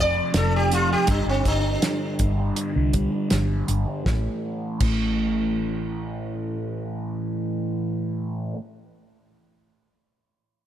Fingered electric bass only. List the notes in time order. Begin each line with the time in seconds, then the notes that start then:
Already playing: F1
0.34 F1
1.08 G1
1.26 G1
1.46 G1
2.19 G1
2.76 C2
3.31 G1
3.69 G1
4.06 A1
4.81 A1